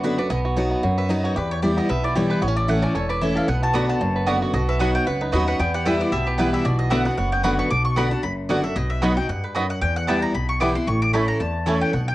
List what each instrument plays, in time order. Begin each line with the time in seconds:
Already playing: upright bass F#1, steel-string acoustic guitar F#2, five-string banjo B3 B4
0.04 steel-string acoustic guitar D3 B3 D4 F#4, five-string banjo F#4, mandolin B4
0.18 steel-string acoustic guitar D4 F#4, five-string banjo B4, mandolin D5
0.30 upright bass B1, steel-string acoustic guitar B2, five-string banjo B3, mandolin D#5
0.45 five-string banjo F#4
0.56 steel-string acoustic guitar F#3 B3 D#4 F#4, five-string banjo F#3
0.71 five-string banjo B3
0.83 steel-string acoustic guitar F#2, upright bass F#2, five-string banjo F#4
0.97 five-string banjo B4, mandolin E5
1.09 steel-string acoustic guitar F#3 B3 D#4 F#4, five-string banjo D#4, mandolin D#5
1.24 five-string banjo F#4, mandolin C#5
1.36 steel-string acoustic guitar E2, upright bass E2, five-string banjo G4, mandolin B4
1.51 mandolin C#5
1.62 steel-string acoustic guitar E3 G3 B3 E4, five-string banjo G4, mandolin D5
1.77 five-string banjo B3, mandolin D#5
1.89 upright bass B1, steel-string acoustic guitar B2, five-string banjo B4, mandolin E5
2.04 five-string banjo E4, mandolin D5
2.15 steel-string acoustic guitar E3 G3 B3 E4, five-string banjo G4, mandolin C#5
2.30 five-string banjo B4, mandolin B4
2.42 upright bass A1, steel-string acoustic guitar A2, five-string banjo B3, mandolin C#5
2.48 five-string banjo C#4
2.56 five-string banjo A4, mandolin D5
2.68 steel-string acoustic guitar E3 A3 C#4 E4, five-string banjo A3, mandolin F#5
2.83 five-string banjo C#4, mandolin D5
2.95 upright bass E1, steel-string acoustic guitar E2, five-string banjo A4, mandolin C#5
3.09 five-string banjo B4, mandolin D5
3.21 steel-string acoustic guitar E3 A3 C#4 E4, five-string banjo E4, mandolin E5
3.36 five-string banjo A4, mandolin F5
3.48 upright bass B1, steel-string acoustic guitar B2, five-string banjo B3, mandolin F#5
3.63 five-string banjo F#4, mandolin A5
3.74 steel-string acoustic guitar D3 B3 D4 F#4, five-string banjo F#3, mandolin B3 F#4 D5 F#5 B5
3.89 five-string banjo B3, mandolin A5
4.01 upright bass F#1, steel-string acoustic guitar F#2, five-string banjo F#4
4.16 five-string banjo B4
4.27 steel-string acoustic guitar D3 B3 D4 F#4, mandolin B3 F#4 D5 F#5, five-string banjo F#4
4.42 five-string banjo F#4
4.53 upright bass B1, steel-string acoustic guitar B2, five-string banjo F#4, mandolin D#5
4.69 five-string banjo B4, mandolin E5
4.79 steel-string acoustic guitar F#3 B3 D#4 F#4, mandolin B3 F#4 D#5 F#5 B5, five-string banjo F#4
4.95 five-string banjo B3, mandolin G5
5.06 upright bass C#2, steel-string acoustic guitar F#2, five-string banjo B4, mandolin F#5
5.21 five-string banjo D#4, mandolin B4
5.32 upright bass D#2, steel-string acoustic guitar F#3 B3 D#4 F#4, mandolin B3 F#4 D#5 B5, five-string banjo F#4
5.48 five-string banjo B4, mandolin F#5
5.59 upright bass E2, steel-string acoustic guitar E2, five-string banjo B3, mandolin G5
5.74 five-string banjo G4, mandolin F#5
5.85 steel-string acoustic guitar E3 G3 B3 E4, five-string banjo G3, mandolin B3 E4 B4 E5 G5
6.01 five-string banjo B3, mandolin D5
6.12 upright bass B1, steel-string acoustic guitar B2, five-string banjo G4, mandolin E5
6.27 mandolin G4, five-string banjo B4
6.38 steel-string acoustic guitar E3 G3 B3 E4, mandolin B3 E4 B4 G5, five-string banjo E4
6.53 five-string banjo G4, mandolin E5
6.65 upright bass B1, steel-string acoustic guitar B2, five-string banjo F#4, mandolin D5
6.79 mandolin D#5
6.90 steel-string acoustic guitar D3 B3 D4 F#4, mandolin B3 F#4 D5 E5 F#5, five-string banjo B4
7.05 five-string banjo B3, steel-string acoustic guitar D4 F#4, mandolin F#5
7.18 upright bass F#1, steel-string acoustic guitar F#2, five-string banjo F#4, mandolin F#5
7.32 five-string banjo B3, mandolin G5
7.43 steel-string acoustic guitar D3 B3 D4 F#4, mandolin B3 F#4 D5 F#5 B5, five-string banjo F#4
7.59 five-string banjo B4, mandolin C#6
7.70 upright bass B1, steel-string acoustic guitar B2, mandolin D6
7.85 mandolin C#6
7.96 steel-string acoustic guitar D3 B3 D4 F#4, mandolin B3 F#4 D5 F#5 B5, five-string banjo B3 F#4
8.11 steel-string acoustic guitar D4 F#4, mandolin A5
8.23 upright bass F#1, steel-string acoustic guitar F#2, mandolin B5
8.49 steel-string acoustic guitar D3 B3 D4 F#4, mandolin B3 F#4 D5 F#5, five-string banjo B3 F#4
8.63 steel-string acoustic guitar D4 F#4, mandolin E5
8.76 upright bass B1, steel-string acoustic guitar B2, mandolin D#5
8.90 mandolin E5
9.02 steel-string acoustic guitar F#3 B3 D#4 F#4, mandolin B3 F#4 D#5 F#5 B5, five-string banjo B3 D#4 F#4
9.17 steel-string acoustic guitar D#4 F#4, mandolin G5
9.29 upright bass F#2, steel-string acoustic guitar G2, mandolin F#5
9.44 mandolin B4
9.55 steel-string acoustic guitar F#2, mandolin B3 F#4 D#5 B5, five-string banjo B3 D#4 F#4
9.70 mandolin F#5
9.81 upright bass E2, steel-string acoustic guitar E2, mandolin G5
9.96 mandolin F#5
10.07 steel-string acoustic guitar E3 G3 B3 E4, mandolin B3 E4 B4 G5 A5, five-string banjo B3 E4 G4
10.22 mandolin A#5
10.35 upright bass B1, steel-string acoustic guitar B2, mandolin B5
10.49 mandolin C#6
10.60 steel-string acoustic guitar E3 G3 B3 E4, mandolin B3 E4 B4 G5 D6, five-string banjo B3 E4 G4
10.75 steel-string acoustic guitar B3 E4, mandolin C6
10.87 upright bass A1, steel-string acoustic guitar A2, mandolin C#6
11.02 mandolin D6
11.13 steel-string acoustic guitar E3 A3 C#4 E4, mandolin A3 E4 C#5 A5 B5, five-string banjo C#4 E4 A4
11.28 mandolin A#5
11.40 upright bass E2, steel-string acoustic guitar E2, mandolin A5
11.66 steel-string acoustic guitar E3 A3 C#4 E4, mandolin A3 E4 C#5 A5, five-string banjo C#4 E4 A4
11.81 mandolin G5
11.93 upright bass B1, steel-string acoustic guitar B2, mandolin F#5
12.08 mandolin G5